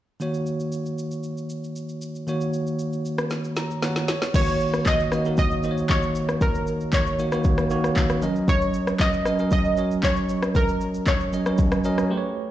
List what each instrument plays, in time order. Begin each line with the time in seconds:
0.20 tine electric piano D#3 A#3 F#4 C#5, shaker
0.34 shaker
0.46 shaker
0.60 shaker
0.72 shaker
0.86 shaker
0.98 shaker
1.11 shaker
1.23 shaker
1.37 shaker
1.50 shaker
1.64 shaker
1.76 shaker
1.89 shaker
2.01 shaker
2.15 shaker
2.27 tine electric piano D#3 A#3 F#4 C#5, shaker
2.41 shaker
2.53 shaker
2.67 shaker
2.79 shaker
2.93 shaker
3.05 shaker
3.18 cross-stick, shaker
3.30 snare, shaker
3.44 shaker
3.56 tine electric piano A#5, snare, shaker
3.71 shaker
3.82 tine electric piano D#3 A#3 F#4 C#5 F#5, snare, shaker
3.96 snare, shaker
4.08 tine electric piano C#5, snare, shaker
4.22 snare, shaker
4.34 tine electric piano D#3 A#3 F#4 C#5, synth pluck C#5, kick, crash, shaker
4.48 shaker
4.60 shaker
4.74 cross-stick, shaker
4.86 synth pluck D#5, kick, clap, shaker
5.00 shaker
5.12 tine electric piano D#3 A#3 F#4 D#5, cross-stick, shaker
5.25 tine electric piano D#3 A#3 F#4 A#4, shaker
5.37 synth pluck D#5, kick, shaker
5.51 shaker
5.63 tine electric piano D#3 A#3 F#4 C5, shaker
5.71 tine electric piano C#5
5.78 shaker
5.89 synth pluck C#5, kick, clap, shaker
6.02 shaker
6.15 shaker
6.29 cross-stick, shaker
6.41 synth pluck A#4, kick, shaker
6.55 shaker
6.67 shaker
6.80 shaker
6.93 synth pluck C#5, kick, clap, shaker
7.06 shaker
7.19 tine electric piano D#3 A#3 F#4 C#5, shaker
7.32 tine electric piano D#3 A#3 F#4 C#5, cross-stick, shaker
7.44 kick, shaker
7.58 cross-stick, shaker
7.70 tine electric piano D#3 A#3 F#4 C#5, shaker
7.84 cross-stick, shaker
7.96 kick, clap, shaker
8.09 cross-stick, shaker
8.22 tine electric piano F#3 C#4 A#4 D#5, shaker
8.36 shaker
8.48 synth pluck C#5, kick, shaker
8.61 shaker
8.74 shaker
8.87 cross-stick, shaker
9.00 synth pluck D#5, kick, clap, shaker
9.13 shaker
9.25 tine electric piano F#3 C#4 A#4 D#5, cross-stick, shaker
9.39 tine electric piano F#3 C#4 A#4 D#5, shaker
9.51 synth pluck D#5, kick, shaker
9.65 shaker
9.77 tine electric piano F#3 C#4 A#4 C#5, shaker
9.91 shaker
10.03 synth pluck C#5, kick, clap, shaker
10.16 shaker
10.29 shaker
10.42 cross-stick, shaker
10.55 synth pluck A#4, kick, shaker
10.68 shaker
10.81 shaker
10.94 shaker
11.07 synth pluck C#5, kick, clap, shaker
11.20 shaker
11.33 tine electric piano F#3 C#4 A#4 D#5, shaker
11.46 tine electric piano F#3 C#4 A#4 C#5, cross-stick, shaker
11.58 kick, shaker
11.72 cross-stick, shaker
11.84 tine electric piano F#3 C#4 A#4 D#5, shaker
11.98 cross-stick, shaker
12.10 tine electric piano A3 G4 B4 C5
12.18 tine electric piano C#5